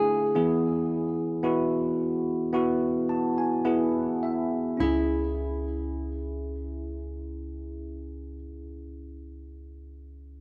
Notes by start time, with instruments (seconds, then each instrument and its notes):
Already playing: tine electric piano A3 D4 E4, nylon-string guitar G#4
0.35 tine electric piano E3 B3 E4 G#4
1.43 tine electric piano B3 E4 F#4
2.53 tine electric piano B3 E4 F#4
3.09 tine electric piano A5
3.38 tine electric piano G#5
3.65 tine electric piano B3 E4 G#4 F#5
4.23 tine electric piano E5
4.77 tine electric piano C#2 C#4 E4, nylon-string guitar E4
4.83 tine electric piano G#4